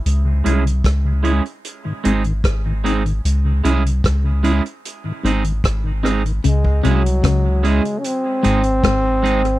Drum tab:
HH |x-xxx-xxx-xxx-xx|x-xxx-xxx-xxx-xx|x-xxx-xxx-xxx-xx|
SD |----r-------r---|----r-------r-r-|----r-------r---|
BD |----o-------o---|----o-------o---|-o--o-------o---|